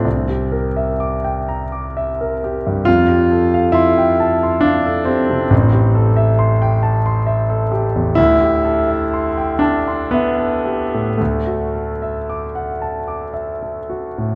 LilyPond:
\new Staff \with { instrumentName = "Grand piano" } { \time 3/4 \key a \phrygian \tempo 4 = 64 << { c,16 g'16 bes'16 e''16 d'''16 g''16 bes''16 d'''16 e''16 bes'16 g'16 g,16 | f,16 g'16 a'16 f''16 c'''16 g''16 a''16 c'''16 f''16 a'16 g'16 c16 | a,,16 g'16 a'16 e''16 c'''16 g''16 a''16 c'''16 e''16 a'16 g'16 e,16 | \key d \mixolydian d,16 g'16 a'16 e''16 c'''16 g''16 a''16 c'''16 e''16 a'16 g'16 a,16 |
d,16 fis'16 a'16 e''16 d'''16 fis''16 a''16 d'''16 e''16 a'16 fis'16 a,16 | } \\ { c'2~ c'8 r8 | f'4 e'4 d'8 c'8~ | c'2~ c'8 r8 | e'4. d'8 b4 |
a2 r4 | } >> }